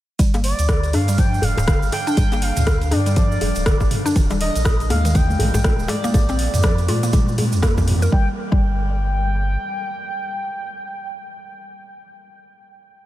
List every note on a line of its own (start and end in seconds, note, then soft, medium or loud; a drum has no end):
0.19 0.54 G1 loud
0.19 0.32 G3 medium
0.19 kick loud
0.19 closed hi-hat medium
0.19 shaker medium
0.34 0.39 A#3 medium
0.34 closed hi-hat soft
0.34 djembe slap medium
0.34 shaker soft
0.44 0.95 D5 loud
0.44 open hi-hat loud
0.59 0.95 D2 loud
0.59 closed hi-hat soft
0.59 shaker medium
0.69 0.82 D3 loud
0.69 kick loud
0.69 cross-stick loud
0.69 closed hi-hat medium
0.69 djembe tone medium
0.69 shaker medium
0.83 closed hi-hat soft
0.83 shaker soft
0.93 1.40 G2 medium
0.93 1.02 D4 medium
0.93 1.20 F5 loud
0.93 open hi-hat medium
0.93 djembe tone medium
1.08 1.17 G3 medium
1.08 closed hi-hat soft
1.08 shaker medium
1.18 1.32 F3 medium
1.18 1.45 G5 loud
1.18 kick loud
1.18 closed hi-hat medium
1.18 shaker medium
1.34 shaker soft
1.42 1.55 F1 loud
1.42 1.92 F5 loud
1.42 open hi-hat loud
1.42 djembe bass loud
1.57 1.76 D1 loud
1.57 closed hi-hat soft
1.57 djembe slap medium
1.57 djembe bass loud
1.57 shaker medium
1.68 1.81 D3 loud
1.68 kick loud
1.68 cross-stick loud
1.68 closed hi-hat medium
1.68 shaker medium
1.82 1.90 G1 loud
1.82 shaker soft
1.92 2.44 G5 loud
1.92 open hi-hat medium
1.92 djembe slap loud
1.92 djembe tone medium
2.07 2.16 D4 loud
2.07 closed hi-hat soft
2.07 shaker medium
2.17 2.52 G1 medium
2.17 2.31 G3 medium
2.17 kick loud
2.17 closed hi-hat medium
2.17 djembe bass medium
2.17 shaker medium
2.32 2.38 A#3 medium
2.32 closed hi-hat soft
2.32 djembe slap medium
2.32 shaker soft
2.42 2.94 F5 loud
2.42 open hi-hat loud
2.57 2.93 D2 loud
2.57 closed hi-hat soft
2.57 mid tom medium
2.57 shaker medium
2.67 2.80 D3 loud
2.67 kick loud
2.67 cross-stick loud
2.67 closed hi-hat medium
2.67 djembe tone medium
2.67 shaker medium
2.81 closed hi-hat soft
2.81 shaker soft
2.91 3.38 G2 loud
2.91 3.00 D4 medium
2.91 3.16 D5 medium
2.91 open hi-hat medium
2.91 djembe tone loud
3.06 3.16 G3 medium
3.06 closed hi-hat soft
3.06 shaker medium
3.16 3.30 F3 medium
3.16 3.87 D5 medium
3.16 kick loud
3.16 closed hi-hat medium
3.16 djembe tone medium
3.16 shaker medium
3.32 shaker soft
3.41 3.53 F1 medium
3.41 open hi-hat medium
3.41 djembe tone medium
3.55 3.75 D1 loud
3.55 closed hi-hat soft
3.55 shaker medium
3.66 3.79 D3 loud
3.66 kick loud
3.66 cross-stick loud
3.66 closed hi-hat medium
3.66 shaker medium
3.80 3.89 G1 loud
3.80 kick medium
3.80 djembe slap medium
3.80 shaker soft
3.91 mid tom medium
3.91 open hi-hat medium
4.06 4.15 D4 loud
4.06 closed hi-hat soft
4.06 shaker medium
4.16 4.50 D#1 loud
4.16 4.29 D#3 medium
4.16 kick loud
4.16 closed hi-hat medium
4.16 low conga loud
4.16 shaker medium
4.30 4.36 G3 medium
4.30 closed hi-hat soft
4.30 djembe slap medium
4.30 shaker soft
4.41 4.87 D#5 loud
4.41 open hi-hat medium
4.55 4.92 A#1 loud
4.55 closed hi-hat soft
4.55 shaker medium
4.65 4.79 A#2 loud
4.65 kick loud
4.65 cross-stick loud
4.65 closed hi-hat medium
4.65 djembe tone medium
4.65 shaker medium
4.80 closed hi-hat soft
4.80 shaker soft
4.90 5.36 D#2 loud
4.90 4.98 A#3 medium
4.90 5.17 F5 loud
4.90 open hi-hat medium
4.90 djembe tone loud
4.90 high conga medium
5.05 5.14 D#3 medium
5.05 closed hi-hat soft
5.05 shaker medium
5.15 5.28 D3 medium
5.15 5.89 G5 loud
5.15 kick loud
5.15 closed hi-hat medium
5.15 low conga medium
5.15 shaker medium
5.29 high conga loud
5.29 shaker soft
5.39 5.51 A#1 medium
5.39 open hi-hat medium
5.39 djembe bass medium
5.39 low conga loud
5.54 5.73 A#1 loud
5.54 closed hi-hat soft
5.54 djembe slap medium
5.54 djembe bass medium
5.54 shaker medium
5.64 5.78 A#2 loud
5.64 kick loud
5.64 cross-stick loud
5.64 closed hi-hat medium
5.64 high conga loud
5.64 low conga medium
5.64 shaker medium
5.79 5.87 D#1 loud
5.79 shaker soft
5.88 6.12 D5 medium
5.88 open hi-hat medium
5.88 djembe slap loud
5.88 djembe tone medium
5.88 high conga medium
6.04 6.13 A#3 loud
6.04 closed hi-hat soft
6.04 high conga loud
6.04 shaker medium
6.14 6.49 A#1 loud
6.14 6.27 A#3 medium
6.14 7.59 D5 loud
6.14 kick loud
6.14 closed hi-hat medium
6.14 low conga loud
6.14 djembe bass medium
6.14 shaker medium
6.29 6.34 C4 medium
6.29 closed hi-hat soft
6.29 djembe slap medium
6.29 shaker soft
6.39 open hi-hat medium
6.53 6.90 F2 loud
6.53 closed hi-hat soft
6.53 mid tom medium
6.53 shaker medium
6.63 6.77 F3 loud
6.63 kick loud
6.63 cross-stick loud
6.63 closed hi-hat medium
6.63 djembe tone medium
6.63 shaker medium
6.78 closed hi-hat soft
6.78 shaker soft
6.88 7.54 A#2 loud
6.88 6.96 F4 medium
6.88 open hi-hat medium
6.88 high conga medium
6.88 djembe tone loud
7.03 7.12 A#3 medium
7.03 closed hi-hat soft
7.03 shaker medium
7.13 7.26 G3 medium
7.13 kick loud
7.13 closed hi-hat medium
7.13 djembe tone loud
7.13 high conga medium
7.13 low conga medium
7.13 shaker medium
7.28 shaker soft
7.38 open hi-hat medium
7.38 high conga medium
7.38 djembe tone medium
7.52 8.09 F2 medium
7.52 closed hi-hat soft
7.52 shaker medium
7.62 7.76 A#3 loud
7.62 kick loud
7.62 cross-stick loud
7.62 closed hi-hat medium
7.62 shaker medium
7.77 kick medium
7.77 djembe slap medium
7.77 high conga medium
7.77 low conga loud
7.77 shaker soft
7.88 mid tom medium
7.88 open hi-hat medium
7.88 low conga medium
8.02 8.12 A#4 medium
8.02 closed hi-hat soft
8.02 shaker medium
8.12 8.28 G1 medium
8.12 8.28 G3 medium
8.12 8.28 G5 medium
8.12 kick loud
8.52 9.57 G1 medium
8.52 8.64 G3 medium
8.52 11.91 G5 loud
8.52 kick loud